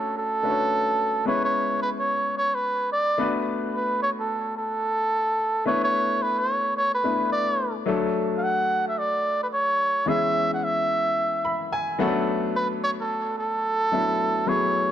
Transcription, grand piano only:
Already playing: A3 C#4 D4 F#4 C#5
0.43 A3 C#4 D4 F#4 B4
0.51 C#5
1.25 G#3 B3 C#4 E4 B4
3.18 A3 B3 D4 F#4 B4
5.66 A3 B3 D4 E4 B4
7.04 A3 B3 D4 E4 B4
7.86 F#3 A3 D4 A4
10.06 E3 G#3 B3 C#4 G#4
11.45 B5
11.72 G#5
11.99 F#3 A3 B3 C#4 A4 F#5
12.07 D4
13.92 F#3 A3 B3 D4 E4
14.46 F#3 A3 B3 E4 G#4

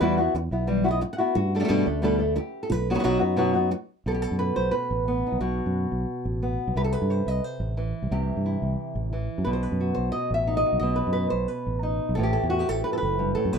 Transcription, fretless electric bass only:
0.01 E2
0.34 E2
0.51 B1
1.36 G2
1.70 G2
1.87 D2
2.71 B1
3.05 B1
3.22 F#2
4.06 B1
4.31 F#2
4.57 B1
4.91 A1
5.32 B1
5.41 B1
5.66 F#2
5.92 B1
6.25 A1
6.68 B1
6.76 C2
7.02 G2
7.27 C2
7.60 A1
8.02 C2
8.11 C2
8.37 G2
8.62 C2
8.95 A1
9.38 F#2
9.47 B1
9.72 F#2
9.97 B1
10.31 A1
10.73 B1
10.81 B1
11.07 F#2
11.32 B1
11.67 A1
12.09 B1
12.18 A1
12.43 E2
12.69 A1
13.03 F#1
13.45 F#2
13.54 B1

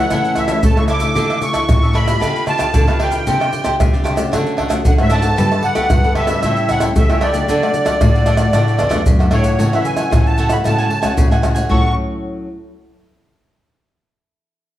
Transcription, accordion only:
Already playing: F#5
0.38 E5
0.65 A5
0.79 C#6
0.89 D6
1.43 C#6
1.95 B5
2.49 A5
3.02 G5
4.87 F#5
5.01 E5
5.12 A5
5.64 F#5
6.17 E5
6.70 F#5
6.97 E5
7.22 D5
9.32 C#5
9.74 E5
9.85 G#5
10.27 A5
10.52 B5
10.67 A5
11.71 C#6

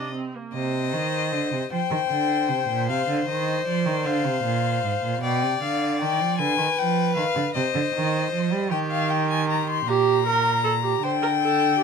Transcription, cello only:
Already playing: C3
0.54 C3
0.93 D#3
1.32 D3
1.52 C3
1.71 F3
1.91 D#3
2.10 D3
2.49 C3
2.69 A#2
2.89 C3
3.09 D3
3.28 D#3
3.66 F3
3.86 D#3
4.05 D3
4.25 C3
4.45 A#2
4.84 G#2
5.03 A#2
5.22 B2
5.43 C3
5.63 D3
6.01 D#3
6.20 F3
6.39 D3
6.58 D#3
6.78 F3
7.16 D#3
7.35 D3
7.56 C3
7.75 D3
7.94 D#3
8.33 F3
8.53 G3
8.72 D#3
9.87 A#2
11.02 D3

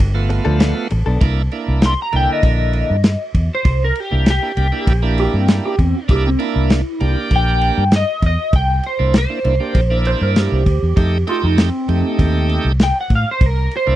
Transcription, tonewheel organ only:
0.14 A3 B3 F4
1.21 A#3 D4 E4
1.52 A#3 D4 E4
2.12 D3 A#3 E4
4.11 A#3 D4 E4
4.42 A#3 D4 E4
4.57 A#3 D4 G4
4.72 A#3 D4 E4
5.02 A#3 D4 E4
6.08 A#3 D4 E4
6.39 A#3 D4 E4
7.00 A#3 D4 G4
8.99 A#3 D4 E4
9.29 A#3 D4 E4
9.44 A#3 D4 E4
9.60 A#3 D4 G4
9.90 A#3 D4 E4
10.96 A3 D#4 G4
11.27 A3 D#4 G4
11.88 A3 D#4 G4
13.87 A#3 D4 E4

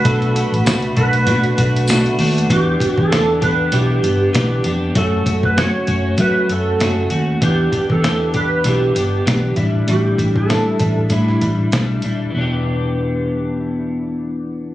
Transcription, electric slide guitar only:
0.06 A4
0.97 B4
2.52 G4
2.88 F#4
2.99 A4
3.44 B4
3.74 G4
4.98 A4
5.45 B4
5.59 C#5
6.21 B4
6.51 A4
7.44 G4
7.92 A4
8.37 B4
8.67 G4
9.90 G4
10.37 A4
11.12 E4

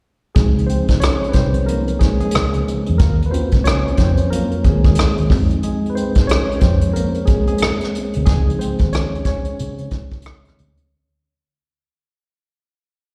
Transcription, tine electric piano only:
0.35 F3 G#3 C4 D#4 G#4
0.67 C4 C5
1.00 C#4 C#5
1.29 B4
1.34 C4 C5
1.66 F3 A#3 C4 D#4 A#4
1.99 G#3 G#4
2.21 G#3 G#4
2.98 A#3 A#4
3.26 B4
3.31 C4 C#4 F4 F#4 C5
3.64 C#4 C#5
3.98 C4 C5
4.30 F#3 A#3 C#4 F4 A#4
4.65 G#3 G#4
4.85 G#3 G#4
5.30 G#3 C4 D#4
5.63 G#3 G#4
5.90 B4
5.95 C4 C5
6.22 C5
6.27 C#4 C#5
6.60 C4 C5
6.93 A#3 A#4
7.25 G#3 G#4
7.48 G#3 G#4
8.25 F3 G#3 C4 D#4 G#4
8.59 C4 C5
8.93 C#4 C#5
9.26 C#4 C#5

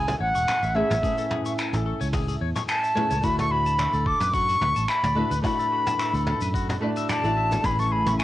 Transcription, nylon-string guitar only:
Already playing: A3 C#4 E4 B4 G#5
0.75 A3 C#4 E4 G#4 B4
1.01 A3 C#4 E4 G#5
1.05 B4
2.95 A3 C#4 E4 G#4 B4
3.21 A3 D4 E4 F#4
3.25 B4
5.15 A3 D4 E4 F#4 B4
5.42 A3 D4 E4 F#4
5.46 B4
6.80 A3 D4 E4 F#4 D5
7.23 A3 D4 E4 F#4 D5
7.62 A3 C#4 E4 G#5
7.66 B4

